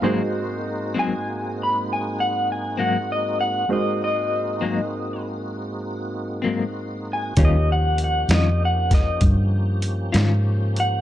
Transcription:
<<
  \new Staff \with { instrumentName = "Clean electric guitar" } { \time 12/8 \key aes \mixolydian \tempo 4. = 65 r4. aes''4 ces'''8 aes''8 ges''8 aes''8 ges''8 ees''8 ges''8 | ees''8 ees''2 r2. aes''8 | ees''8 ges''8 ges''8 ees''8 ges''8 ees''8 r2 r8 ges''8 | }
  \new Staff \with { instrumentName = "Upright piano" } { \time 12/8 \key aes \mixolydian <aes bes ees' ges' c''>1. | <aes ees' ges' bes' c''>1. | <ees' g' bes' des''>1. | }
  \new Staff \with { instrumentName = "Tonewheel organ" } { \time 12/8 \key aes \mixolydian <aes, bes c' ees' ges'>1. | <aes, bes c' ees' ges'>1. | <f bes des' g'>1. | }
  \new Staff \with { instrumentName = "Clean electric guitar" } { \clef bass \time 12/8 \key aes \mixolydian <aes, ges bes c'>8 r4 <aes, ges bes c'>8 r2 r8 <aes, ges bes c'>8 r4 | r4. <aes, ges bes c'>8 r2 r8 <aes, ges bes c'>8 r4 | <ees g des' f'>8 r4 <ees g des' f'>8 r2 r8 <ees g des' f'>8 r4 | }
  \new Staff \with { instrumentName = "Fingered electric bass" } { \clef bass \time 12/8 \key aes \mixolydian r1. | r1. | ees,4. f,4. g,4. aes,4. | }
  \new DrumStaff \with { instrumentName = "Drums" } \drummode { \time 12/8 r4. r4. r4. r4. | r4. r4. r4. r4. | <hh bd>4 hh8 <hh sn>4 <hh bd sn>8 <hh bd>4 hh8 <hh sn>4 hh8 | }
>>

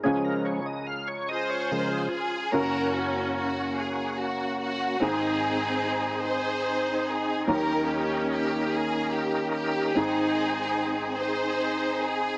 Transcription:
<<
  \new Staff \with { instrumentName = "String section" } { \time 6/8 \key ges \lydian \tempo 4. = 48 << { r4. c''4 aes'8 | bes'8 ges'8 ges'8 aes'8 ges'8 ges'8 | aes'4. c''4 aes'8 | bes'8 g'8 g'8 aes'8 g'8 g'8 |
aes'4. c''4 aes'8 | } \\ { r4. <f' aes'>4. | <des' ges'>4. r4. | <c' ees'>4. <ees' aes'>4. | <des' g'>4. r4. |
<c' ees'>4. <ees' aes'>4. | } >> }
  \new Staff \with { instrumentName = "French horn section" } { \time 6/8 \key ges \lydian <aes des' f' aes'>2. | r2. | r2. | r2. |
r2. | }
  \new Staff \with { instrumentName = "Tonewheel organ" } { \time 6/8 \key ges \lydian aes'16 bes'16 des''16 ees''16 f''16 des''16 ees''16 des''16 bes'16 aes'8 r16 | <bes des' f' ges'>2. | <bes c' ees' aes'>2. | <ees f bes des' ees' bes'>2. |
<c' ees' aes'>2. | }
  \new Staff \with { instrumentName = "Tonewheel organ" } { \clef bass \time 6/8 \key ges \lydian <des f aes>8 r4. <des f aes>8 r8 | r2. | r2. | r2. |
r2. | }
  \new Staff \with { instrumentName = "Upright piano" } { \time 6/8 \key ges \lydian <des, des des' f' aes'>2. | <ges,, ges, des' ges' bes'>2. | <aes,, aes, c' ees' aes'>2. | <ees, ees ges bes des' ees' bes'>2. |
<aes,, aes, c' ees' aes'>2. | }
>>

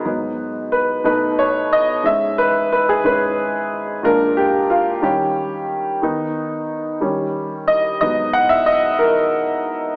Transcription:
<<
  \new Staff \with { instrumentName = "Upright piano" } { \time 6/8 \key gis \minor \tempo 4. = 60 r4 b'8 b'8 cis''8 dis''8 | e''8 b'8 b'16 gis'16 b'4. | ais'8 g'8 eis'8 g'4. | r2 r8 dis''8 |
dis''8 fis''16 e''16 dis''8 ais'4. | }
  \new Staff \with { instrumentName = "Upright piano" } { \clef bass \time 6/8 \key gis \minor <gis, fis b>8 r4 <b, a dis'>4. | <gis, gis cis'>8 r4 <gis, gis cis'>8 r4 | <ais, gis d'>8 r4 <dis g cis'>8 r4 | <dis b dis'>4. <dis g cis'>4. |
<gis, fis b>2. | }
>>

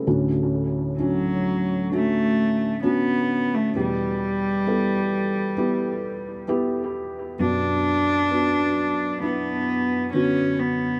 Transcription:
<<
  \new Staff \with { instrumentName = "Felt piano" } { \time 4/4 \key d \major \tempo 4 = 66 << { a'16 r2. r8. | r1 | r1 | } \\ { <cis' d' fis'>4 <cis' d' fis'>4 <cis' d' fis'>4 <cis' d' fis'>4 | <b e' g'>4 <b e' a'>4 <b e' g'>4 <b e' g'>4 | <b d' fis'>4 <b d' fis'>4 <b d' e'>4 <d b fis'>4 | } >> }
  \new Staff \with { instrumentName = "Felt piano" } { \clef bass \time 4/4 \key d \major <d, a,>1 | <e, b,>1 | <b,, fis,>1 | }
  \new Staff \with { instrumentName = "Cello" } { \time 4/4 \key d \major r4 fis4 a4 b8. a16 | g2. r4 | d'2 b4 cis'8 b8 | }
>>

